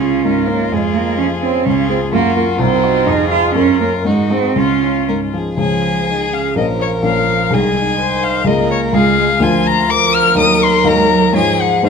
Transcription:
0.00 0.69 C#2 soft
0.00 0.50 C#4 medium
0.00 1.65 F4 soft
0.00 0.39 F4 soft
0.00 0.24 G#4 soft
0.25 0.63 G#2 soft
0.25 0.74 A#4 medium
0.48 0.73 A#3 medium
0.48 0.72 C#4 soft
0.72 1.63 F2 soft
0.72 0.96 G#3 medium
0.72 1.65 G#4 medium
0.94 1.17 A#3 medium
0.94 1.33 F4 soft
1.18 1.56 F3 soft
1.18 1.26 C#4 medium
1.42 1.66 C4 medium
1.42 1.66 C#4 soft
1.65 2.11 C#2 soft
1.65 1.89 C#4 medium
1.65 2.09 F4 soft
1.65 2.12 G#4 medium
1.89 1.98 C4 medium
1.89 2.10 F4 soft
1.89 2.11 G#4 soft
2.12 2.58 F#2 medium
2.12 2.36 A#3 medium
2.12 2.60 F4 medium
2.12 2.62 F#4 medium
2.36 2.44 A#3 medium
2.36 2.57 F4 soft
2.36 2.58 A#4 soft
2.59 3.06 C2 medium
2.59 3.08 C4 medium
2.59 3.09 D#4 medium
2.59 4.06 F4 medium
2.82 3.04 D#4 soft
2.82 3.05 F#4 soft
3.06 3.54 F2 medium
3.06 3.31 D#4 medium
3.06 3.56 G#4 medium
3.31 3.54 F4 soft
3.31 3.55 F4 medium
3.31 3.54 G#4 soft
3.55 4.04 F#2 medium
3.55 3.80 C#4 medium
3.55 4.08 A#4 medium
3.80 3.89 A#3 medium
3.80 4.03 C#4 soft
3.80 4.03 A#4 soft
4.05 4.54 G#2 soft
4.05 4.33 G#3 medium
4.05 4.56 D#4 medium
4.05 4.56 F#4 soft
4.30 4.54 C4 soft
4.30 4.59 C4 medium
4.30 4.54 G#4 soft
4.56 5.55 C#2 soft
4.56 5.08 C#4 medium
4.56 5.02 F4 soft
4.56 5.33 F4 medium
4.83 5.24 C#4 soft
5.09 5.49 G#2 soft
5.09 5.17 A#4 soft
5.34 5.56 F3 soft
5.34 5.58 G#4 soft
5.57 6.53 C#2 soft
5.57 6.53 F3 soft
5.57 6.12 F3 soft
5.57 6.54 C#4 soft
5.57 6.52 G#4 medium
5.57 6.54 G#4 soft
5.57 6.35 G#5 medium
6.10 6.33 D#3 soft
6.33 6.59 C#3 soft
6.33 6.57 F5 medium
6.55 7.01 A#1 soft
6.55 7.02 F3 soft
6.55 7.05 F3 soft
6.55 7.02 C#4 soft
6.55 7.03 A#4 soft
6.55 7.55 A#4 medium
6.55 6.65 D#5 medium
6.82 6.90 C#5 medium
7.02 7.50 A#1 soft
7.02 7.51 F3 soft
7.02 7.55 F3 soft
7.02 7.51 C#4 soft
7.02 7.51 A#4 soft
7.02 7.55 F5 medium
7.50 8.43 C2 soft
7.50 7.76 D#3 medium
7.50 8.43 G#3 soft
7.50 8.43 D#4 soft
7.50 8.43 G#4 soft
7.50 7.99 G#4 medium
7.50 8.25 G#5 medium
7.77 8.49 D#3 soft
7.99 8.46 C5 medium
8.23 8.49 F5 medium
8.44 8.91 C#2 soft
8.44 8.92 G#3 soft
8.44 8.96 A#3 medium
8.44 8.92 F4 soft
8.44 8.92 G#4 soft
8.44 8.97 A#4 medium
8.44 8.70 D#5 medium
8.71 8.79 C#5 medium
8.93 9.39 C#2 medium
8.93 9.40 G#3 soft
8.93 9.18 G#3 medium
8.93 9.39 F4 soft
8.93 9.40 G#4 soft
8.93 9.44 G#4 medium
8.93 9.44 F5 medium
9.18 9.26 G#3 medium
9.40 10.33 D2 medium
9.40 10.34 F3 soft
9.40 9.88 F3 medium
9.40 10.34 F4 soft
9.40 9.91 F4 medium
9.40 10.34 A#4 soft
9.40 9.68 G#5 medium
9.67 9.92 A#5 medium
9.89 10.39 F3 medium
9.89 11.34 A#4 medium
9.89 10.16 D6 medium
10.15 10.38 F6 medium
10.35 10.83 D#2 medium
10.35 10.83 F#3 soft
10.35 10.88 F#3 medium
10.35 10.83 D#4 soft
10.35 10.84 A#4 soft
10.39 10.65 D#6 medium
10.63 10.89 C6 medium
10.84 11.33 D#2 medium
10.84 11.33 F#3 soft
10.84 11.12 G#3 medium
10.84 11.33 D#4 soft
10.84 11.33 A#4 soft
10.84 11.35 A#5 medium
11.10 11.38 F#3 medium
11.33 11.81 G#2 medium
11.33 11.87 F3 medium
11.33 11.82 G#3 soft
11.33 11.84 F4 soft
11.33 11.85 G#4 medium
11.33 11.84 C#5 soft
11.33 11.63 G#5 medium
11.61 11.86 F#5 medium
11.83 11.89 G#2 medium
11.83 11.89 D#3 medium
11.83 11.89 G#3 soft
11.83 11.89 D#4 soft
11.83 11.89 G#4 medium
11.83 11.89 C5 soft

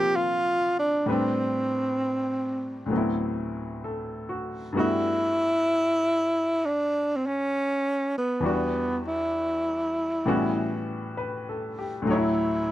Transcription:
0.00 1.08 A#2 soft
0.00 1.07 F3 soft
0.00 1.05 G3 soft
0.00 1.08 A#3 soft
0.00 1.08 C4 soft
0.00 1.09 D4 soft
0.00 0.17 G4 medium
0.16 0.78 F4 medium
0.79 1.10 D4 medium
1.06 2.87 A2 soft
1.06 2.90 G3 soft
1.06 2.92 C4 medium
1.06 2.91 B4 soft
1.10 2.92 C4 soft
1.10 2.92 D4 medium
2.86 4.73 D2 soft
2.86 4.74 A2 soft
2.90 4.75 F#3 soft
2.90 4.75 B3 soft
2.95 4.78 C4 soft
2.95 4.79 E4 soft
3.84 4.57 A4 soft
4.29 4.76 F#4 soft
4.72 8.41 G2 soft
4.72 8.41 G3 soft
4.72 8.43 A3 soft
4.72 8.43 B3 soft
4.77 6.67 E4 medium
4.77 8.44 F#4 medium
6.65 7.18 D4 medium
7.16 7.28 C4 medium
7.26 8.15 C#4 medium
8.18 8.43 B3 medium
8.40 10.23 E2 soft
8.40 10.25 E3 soft
8.40 10.24 G3 soft
8.44 9.03 B3 medium
8.44 10.26 D4 soft
8.44 10.26 F#4 soft
9.08 10.84 E4 medium
10.26 12.04 A2 soft
10.26 12.08 E3 soft
10.26 12.07 G3 soft
10.26 12.08 B3 soft
10.26 12.08 C#4 soft
10.26 12.09 F#4 medium
11.17 11.74 B4 soft
11.49 11.95 A4 soft
11.79 12.25 G4 soft
12.02 12.72 D2 soft
12.02 12.72 A2 soft
12.07 12.72 F#3 medium
12.07 12.72 E4 medium
12.07 12.72 C#5 soft
12.13 12.72 E4 medium

